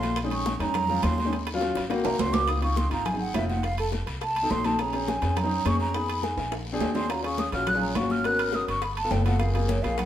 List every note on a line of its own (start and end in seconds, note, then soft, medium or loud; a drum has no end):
0.00 0.55 A#1 loud
0.00 0.15 A3 medium
0.00 0.16 C4 medium
0.00 0.16 F4 medium
0.00 0.17 C6 loud
0.00 high bongo soft
0.00 high conga medium
0.00 high timbale medium
0.00 short guiro medium
0.16 high bongo medium
0.16 high conga soft
0.16 high timbale medium
0.16 long guiro medium
0.23 0.49 G#3 medium
0.23 0.49 C4 medium
0.23 0.50 C#4 medium
0.23 0.50 D#4 medium
0.31 0.59 C#6 loud
0.31 high bongo soft
0.31 high timbale medium
0.46 high bongo medium
0.46 high conga loud
0.46 low timbale medium
0.46 short guiro medium
0.59 1.00 F2 medium
0.59 0.80 G#3 medium
0.59 0.80 C4 medium
0.59 0.81 C#4 medium
0.59 0.81 D#4 medium
0.59 1.05 A#5 loud
0.59 high bongo soft
0.59 high timbale medium
0.59 short guiro medium
0.74 high bongo medium
0.74 high conga soft
0.74 low conga medium
0.74 high timbale medium
0.74 long guiro medium
0.88 1.14 G#3 medium
0.88 1.14 C4 medium
0.88 1.15 C#4 medium
0.88 1.15 F4 medium
0.88 high conga soft
0.88 low conga medium
1.03 1.70 D#2 loud
1.03 1.32 C6 loud
1.03 high bongo soft
1.03 low bongo medium
1.03 high conga medium
1.03 high timbale loud
1.03 low timbale medium
1.03 short guiro medium
1.18 high bongo soft
1.18 high conga medium
1.18 short guiro medium
1.25 1.32 G#3 medium
1.25 1.32 C4 medium
1.25 1.33 C#4 medium
1.25 1.33 D#4 medium
1.32 high bongo medium
1.32 high conga soft
1.32 high timbale medium
1.32 long guiro medium
1.47 high bongo medium
1.47 high conga soft
1.47 high timbale loud
1.54 1.79 F#3 loud
1.54 1.79 C#4 medium
1.54 1.80 F4 loud
1.61 high bongo medium
1.61 high conga medium
1.61 low timbale medium
1.61 short guiro medium
1.75 2.03 G#1 medium
1.75 low bongo medium
1.75 high conga soft
1.75 high timbale medium
1.75 short guiro medium
1.90 2.15 A#3 loud
1.90 2.15 C4 medium
1.90 2.16 F#4 loud
1.90 low bongo loud
1.90 high conga soft
1.90 high timbale medium
1.90 long guiro medium
2.04 2.18 C2 medium
2.04 2.22 A#5 medium
2.04 low bongo loud
2.04 high conga soft
2.04 high timbale medium
2.19 2.86 C#2 medium
2.19 2.35 C6 loud
2.19 high conga medium
2.19 low timbale loud
2.19 short guiro medium
2.26 2.46 A#3 medium
2.26 2.46 C4 medium
2.26 2.47 F#4 medium
2.33 2.50 D6 loud
2.33 low bongo medium
2.33 high conga medium
2.33 low timbale medium
2.33 short guiro medium
2.47 2.58 C4 medium
2.47 2.58 D#4 medium
2.47 2.58 F4 medium
2.47 2.62 D#6 medium
2.47 high bongo medium
2.47 high conga soft
2.47 high timbale medium
2.47 long guiro medium
2.62 2.82 C4 medium
2.62 2.82 D#4 medium
2.62 2.83 F4 medium
2.62 2.79 C#6 medium
2.62 high bongo soft
2.62 high conga soft
2.62 high timbale medium
2.76 2.92 C6 medium
2.76 high bongo medium
2.76 high conga loud
2.76 low timbale medium
2.76 short guiro medium
2.90 3.31 G#1 medium
2.90 3.06 C4 medium
2.90 3.06 D#4 medium
2.90 3.06 F4 medium
2.90 3.07 A#5 loud
2.90 high bongo soft
2.90 high timbale medium
2.90 short guiro medium
3.05 3.19 G#5 medium
3.05 high bongo medium
3.05 high conga soft
3.05 low conga medium
3.05 high timbale medium
3.05 long guiro medium
3.13 3.28 C4 medium
3.13 3.28 D#4 medium
3.13 3.29 G#4 medium
3.20 3.37 F#5 medium
3.20 high conga soft
3.34 4.01 F1 medium
3.34 3.63 C4 medium
3.34 3.64 D#4 medium
3.34 3.64 F4 medium
3.34 3.48 E5 medium
3.34 high bongo soft
3.34 low bongo medium
3.34 high conga medium
3.34 high timbale medium
3.34 low timbale medium
3.34 short guiro medium
3.49 3.66 F#5 medium
3.49 high bongo soft
3.49 high conga medium
3.49 short guiro medium
3.63 3.78 F5 medium
3.63 high bongo medium
3.63 high timbale medium
3.63 long guiro medium
3.78 3.87 A4 medium
3.78 high bongo soft
3.78 high conga soft
3.78 high timbale medium
3.92 high bongo medium
3.92 high conga medium
3.92 low timbale medium
3.92 short guiro medium
4.07 4.47 C2 medium
4.07 high bongo soft
4.07 high conga soft
4.07 high timbale medium
4.07 short guiro medium
4.21 4.52 A5 loud
4.21 high bongo medium
4.21 high conga soft
4.21 high timbale medium
4.21 long guiro medium
4.36 high conga soft
4.36 high timbale medium
4.42 4.58 C4 medium
4.42 4.58 D#4 medium
4.42 4.58 A4 medium
4.50 5.17 A#1 medium
4.50 4.67 C6 loud
4.50 high bongo soft
4.50 low bongo medium
4.50 high conga medium
4.50 low timbale medium
4.50 short guiro medium
4.64 4.75 C4 medium
4.64 4.75 D#4 medium
4.64 4.75 A4 medium
4.64 4.81 A5 loud
4.64 high bongo soft
4.64 high conga medium
4.64 high timbale medium
4.64 short guiro medium
4.79 4.89 C4 medium
4.79 4.89 C#4 medium
4.79 4.90 G#4 medium
4.79 5.10 A#5 loud
4.79 high bongo medium
4.79 high timbale medium
4.79 long guiro medium
4.93 5.13 C4 medium
4.93 5.14 C#4 medium
4.93 5.14 G#4 medium
4.93 high bongo soft
4.93 high conga soft
4.93 high timbale medium
5.08 5.38 G#5 medium
5.08 high bongo medium
5.08 high conga loud
5.08 low timbale medium
5.08 short guiro medium
5.22 5.62 F2 medium
5.22 5.37 C4 medium
5.22 5.38 C#4 medium
5.22 5.38 G#4 medium
5.22 high bongo soft
5.22 high timbale medium
5.22 short guiro medium
5.36 5.68 A#5 medium
5.36 high bongo medium
5.36 high conga soft
5.36 low conga medium
5.36 high timbale medium
5.36 long guiro medium
5.43 5.58 C4 medium
5.43 5.59 C#4 medium
5.43 5.59 D#4 medium
5.51 high conga soft
5.65 6.32 F2 medium
5.65 5.94 C4 medium
5.65 5.94 C#4 medium
5.65 5.94 G#4 medium
5.65 5.80 C#6 loud
5.65 high bongo soft
5.65 low bongo medium
5.65 high conga medium
5.65 high timbale medium
5.65 low timbale medium
5.65 short guiro medium
5.80 5.96 A#5 loud
5.80 high bongo soft
5.80 high conga medium
5.80 short guiro medium
5.94 6.40 B3 medium
5.94 6.40 D#4 medium
5.94 6.41 G#4 medium
5.94 6.25 B5 loud
5.94 high bongo medium
5.94 high conga soft
5.94 high timbale medium
5.94 long guiro medium
6.09 high bongo soft
6.09 high conga soft
6.09 high timbale medium
6.23 6.52 G#5 medium
6.23 high bongo medium
6.23 high conga medium
6.23 low timbale medium
6.23 short guiro medium
6.37 6.78 A#1 medium
6.37 high bongo soft
6.37 high conga soft
6.37 high timbale medium
6.37 short guiro medium
6.51 high bongo medium
6.51 high conga soft
6.51 high timbale medium
6.51 long guiro medium
6.66 high conga soft
6.72 6.88 C4 medium
6.72 6.89 D4 medium
6.72 6.89 G#4 loud
6.80 7.47 D#2 medium
6.80 high bongo soft
6.80 low bongo medium
6.80 high conga medium
6.80 low timbale loud
6.80 short guiro medium
6.94 7.05 C4 medium
6.94 7.05 D4 medium
6.94 7.06 G#4 medium
6.94 7.12 C6 medium
6.94 high bongo soft
6.94 high conga medium
6.94 low timbale medium
6.94 short guiro medium
7.09 7.20 C#4 medium
7.09 7.20 F4 medium
7.09 7.20 F#4 medium
7.09 7.24 A#5 medium
7.09 high bongo medium
7.09 high conga soft
7.09 high timbale medium
7.09 long guiro medium
7.23 7.44 C#4 medium
7.23 7.44 F4 medium
7.23 7.45 G#4 medium
7.23 7.41 C#6 medium
7.23 high bongo soft
7.23 high conga soft
7.23 high timbale medium
7.38 7.53 D#6 medium
7.38 high bongo medium
7.38 high conga medium
7.38 low timbale medium
7.38 short guiro medium
7.52 7.93 A#1 medium
7.52 7.68 C#4 medium
7.52 7.69 F4 medium
7.52 7.69 F#4 medium
7.52 7.70 F6 loud
7.52 high bongo soft
7.52 high timbale medium
7.52 short guiro medium
7.67 7.81 F#6 loud
7.67 high bongo medium
7.67 high conga soft
7.67 low conga medium
7.67 high timbale medium
7.67 long guiro medium
7.74 7.89 C#4 medium
7.74 7.90 F4 medium
7.74 7.90 G#4 medium
7.81 7.97 A#5 medium
7.81 high conga soft
7.95 8.63 G#1 loud
7.95 8.23 C#4 medium
7.95 8.25 F4 medium
7.95 8.23 F#4 medium
7.95 8.13 C#6 medium
7.95 high bongo soft
7.95 low bongo medium
7.95 high conga medium
7.95 high timbale medium
7.95 low timbale medium
7.95 short guiro medium
8.10 8.27 F6 medium
8.10 high bongo soft
8.10 high conga medium
8.10 short guiro medium
8.24 8.71 B3 medium
8.24 8.71 C#4 medium
8.24 8.71 F#4 medium
8.24 8.71 A#4 medium
8.24 8.41 F#6 medium
8.24 high bongo medium
8.24 high conga soft
8.24 high timbale medium
8.24 long guiro medium
8.39 8.57 F6 loud
8.39 high bongo soft
8.39 high conga soft
8.39 high timbale medium
8.52 8.69 D#6 loud
8.52 high bongo medium
8.52 high conga medium
8.52 low timbale medium
8.52 short guiro medium
8.67 9.08 G1 medium
8.67 8.84 C#6 medium
8.67 high bongo soft
8.67 high conga soft
8.67 high timbale medium
8.67 short guiro medium
8.82 8.96 B5 medium
8.82 high bongo medium
8.82 high conga soft
8.82 high timbale medium
8.82 long guiro medium
8.97 9.13 A5 loud
8.97 high conga soft
8.97 high timbale medium
9.04 9.19 B3 medium
9.04 9.20 F4 medium
9.04 9.20 A4 medium
9.11 9.78 F#1 medium
9.11 9.25 G5 medium
9.11 high bongo soft
9.11 low bongo medium
9.11 high conga medium
9.11 low timbale medium
9.11 short guiro medium
9.25 9.36 B3 medium
9.25 9.36 F4 medium
9.25 9.36 A4 medium
9.25 9.41 F#5 loud
9.25 high bongo soft
9.25 high conga medium
9.25 high timbale medium
9.25 short guiro medium
9.39 9.50 A#3 medium
9.39 9.50 C4 medium
9.39 9.50 F4 medium
9.39 9.51 G#4 medium
9.39 9.53 F5 medium
9.39 high bongo medium
9.39 high timbale medium
9.39 long guiro medium
9.54 9.75 A#3 medium
9.54 9.75 C4 medium
9.54 9.75 F4 medium
9.54 9.70 G#4 medium
9.54 9.75 G#4 medium
9.54 high bongo soft
9.54 high conga soft
9.54 high timbale medium
9.68 9.84 C#5 medium
9.68 high bongo medium
9.68 high conga loud
9.68 low timbale medium
9.68 short guiro medium
9.82 10.05 A#1 medium
9.82 9.98 A#3 medium
9.82 9.98 C4 medium
9.82 9.99 F4 medium
9.82 9.99 G#4 medium
9.82 9.99 F5 loud
9.82 high bongo soft
9.82 high timbale medium
9.82 short guiro medium
9.98 10.05 F#5 medium
9.98 high bongo medium
9.98 high conga soft
9.98 low conga medium
9.98 high timbale loud
9.98 long guiro medium